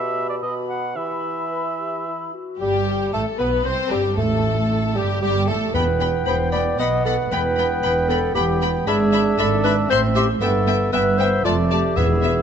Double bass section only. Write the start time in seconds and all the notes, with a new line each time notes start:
2.61 G1
3.14 A1
3.40 B1
3.66 C2
3.92 G1
4.18 A1
4.97 G1
5.23 G1
5.49 A1
5.75 E1
6.28 E1
6.80 B1
7.32 E1
7.84 E1
8.36 E1
8.87 G#1
9.39 G#1
9.90 A1
10.42 G1
10.93 G1
11.46 F1
11.97 E1